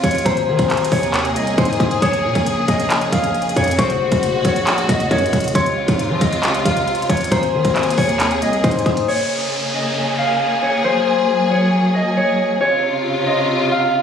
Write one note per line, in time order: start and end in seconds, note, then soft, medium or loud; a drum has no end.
0.00 0.25 C#2 loud
0.00 0.24 C3 medium
0.00 0.24 C#3 medium
0.00 0.24 F4 loud
0.00 0.31 C#5 medium
0.00 0.93 D#5 medium
0.00 1.26 F5 medium
0.00 0.22 C6 loud
0.00 kick medium
0.00 closed hi-hat medium
0.11 closed hi-hat medium
0.15 closed hi-hat soft
0.18 closed hi-hat medium
0.25 0.49 G#1 loud
0.25 2.00 C3 medium
0.25 3.75 A#3 medium
0.25 3.75 G#4 medium
0.25 0.98 C5 loud
0.25 1.54 A#5 loud
0.25 kick loud
0.25 closed hi-hat medium
0.37 closed hi-hat medium
0.48 0.58 D#3 loud
0.59 0.91 G#1 loud
0.59 kick loud
0.59 closed hi-hat medium
0.70 clap medium
0.70 closed hi-hat soft
0.77 closed hi-hat medium
0.84 closed hi-hat medium
0.92 1.37 D#2 loud
0.92 1.64 C#5 medium
0.92 kick loud
0.92 open hi-hat medium
1.03 closed hi-hat medium
1.14 clap loud
1.14 closed hi-hat medium
1.25 closed hi-hat medium
1.36 1.57 C2 loud
1.36 2.68 D#5 medium
1.36 closed hi-hat medium
1.47 closed hi-hat medium
1.58 1.79 G#2 loud
1.58 2.08 C5 medium
1.58 1.79 C6 medium
1.58 kick loud
1.58 closed hi-hat medium
1.65 closed hi-hat medium
1.73 closed hi-hat medium
1.80 2.01 G#2 loud
1.80 2.01 D#6 medium
1.80 kick medium
1.80 closed hi-hat soft
1.91 closed hi-hat medium
2.02 2.26 A#1 loud
2.02 3.77 C#3 medium
2.02 3.56 C#5 loud
2.02 3.75 D#6 loud
2.02 kick loud
2.02 closed hi-hat medium
2.13 closed hi-hat medium
2.24 2.35 A#2 loud
2.35 2.67 A#1 loud
2.35 kick loud
2.35 closed hi-hat medium
2.46 closed hi-hat medium
2.68 3.11 A#1 loud
2.68 4.46 D#5 medium
2.68 kick loud
2.68 closed hi-hat medium
2.80 closed hi-hat medium
2.90 clap loud
2.90 closed hi-hat medium
3.01 closed hi-hat medium
3.12 3.55 A#1 loud
3.12 4.79 F5 medium
3.12 kick loud
3.12 closed hi-hat medium
3.24 closed hi-hat medium
3.34 closed hi-hat soft
3.42 closed hi-hat medium
3.49 closed hi-hat medium
3.56 3.78 F2 loud
3.56 3.85 C#5 medium
3.56 kick medium
3.56 closed hi-hat medium
3.64 closed hi-hat medium
3.68 closed hi-hat soft
3.71 closed hi-hat medium
3.79 4.02 F#1 loud
3.79 5.53 A#2 medium
3.79 5.53 G#3 medium
3.79 5.53 F#4 loud
3.79 4.51 C5 loud
3.79 5.51 C#6 loud
3.79 kick loud
3.79 closed hi-hat medium
3.90 closed hi-hat medium
4.01 4.11 F1 loud
4.12 4.35 F#1 loud
4.12 kick loud
4.12 closed hi-hat medium
4.23 closed hi-hat medium
4.34 4.44 F1 loud
4.45 4.87 A#1 loud
4.45 5.11 C#5 medium
4.45 kick loud
4.45 closed hi-hat medium
4.56 closed hi-hat medium
4.67 clap loud
4.67 closed hi-hat medium
4.78 closed hi-hat medium
4.89 5.10 F#1 loud
4.89 6.21 D#5 medium
4.89 kick loud
4.89 closed hi-hat medium
5.00 closed hi-hat medium
5.11 5.32 F#2 loud
5.11 5.54 C#5 medium
5.11 kick loud
5.11 closed hi-hat soft
5.18 closed hi-hat medium
5.26 closed hi-hat medium
5.33 5.54 F#1 loud
5.33 kick medium
5.33 closed hi-hat medium
5.40 closed hi-hat medium
5.44 closed hi-hat soft
5.48 closed hi-hat medium
5.55 5.87 C#2 loud
5.55 7.30 C3 medium
5.55 7.30 C#3 medium
5.55 7.30 F4 loud
5.55 7.09 C#5 loud
5.55 7.28 C6 loud
5.55 kick loud
5.55 closed hi-hat medium
5.66 closed hi-hat medium
5.88 6.12 G#2 loud
5.88 kick medium
5.88 closed hi-hat medium
5.99 closed hi-hat medium
6.10 6.21 F3 loud
6.21 6.64 C#2 loud
6.21 7.99 D#5 medium
6.21 kick loud
6.21 closed hi-hat medium
6.33 closed hi-hat medium
6.43 clap loud
6.43 closed hi-hat medium
6.54 closed hi-hat medium
6.65 6.87 C#2 loud
6.65 8.32 F5 medium
6.65 kick loud
6.65 closed hi-hat medium
6.77 closed hi-hat medium
6.88 closed hi-hat soft
6.95 closed hi-hat medium
7.02 closed hi-hat medium
7.09 7.31 C#2 loud
7.09 7.37 C#5 medium
7.09 kick medium
7.09 closed hi-hat medium
7.17 closed hi-hat medium
7.21 closed hi-hat soft
7.24 closed hi-hat medium
7.31 7.55 G#1 loud
7.31 9.06 C3 medium
7.31 9.06 A#3 medium
7.31 9.06 G#4 medium
7.31 8.04 C5 loud
7.31 8.60 A#5 loud
7.31 kick loud
7.31 closed hi-hat medium
7.43 closed hi-hat medium
7.54 7.64 D#3 loud
7.65 7.96 G#1 loud
7.65 kick medium
7.65 closed hi-hat medium
7.76 clap medium
7.76 closed hi-hat soft
7.83 closed hi-hat medium
7.90 closed hi-hat medium
7.98 8.43 D#2 loud
7.98 8.70 C#5 medium
7.98 kick loud
7.98 open hi-hat medium
8.09 closed hi-hat medium
8.20 clap loud
8.20 closed hi-hat medium
8.31 closed hi-hat medium
8.42 8.63 C2 loud
8.42 9.74 D#5 medium
8.42 closed hi-hat medium
8.53 closed hi-hat medium
8.64 8.85 G#2 loud
8.64 9.14 C5 loud
8.64 8.85 C6 medium
8.64 kick loud
8.64 closed hi-hat medium
8.71 closed hi-hat medium
8.79 closed hi-hat medium
8.86 9.07 G#2 loud
8.86 9.07 D#6 medium
8.86 kick medium
8.86 closed hi-hat soft
8.97 closed hi-hat medium
9.08 10.83 C#3 medium
9.08 12.57 A#3 medium
9.08 12.57 G#4 medium
9.08 10.62 C#5 loud
9.08 downlifter medium
9.74 11.52 D#5 medium
10.18 11.85 F5 medium
10.62 10.90 C#5 medium
10.84 12.59 F#3 medium
10.84 11.57 C5 loud
11.51 12.16 C#5 medium
11.95 13.26 D#5 medium
12.17 12.60 C#5 medium
12.61 14.02 C3 medium
12.61 14.02 C#3 medium
12.61 14.02 F4 medium
12.61 14.02 C#5 loud
13.27 14.02 D#5 medium
13.71 14.02 F5 medium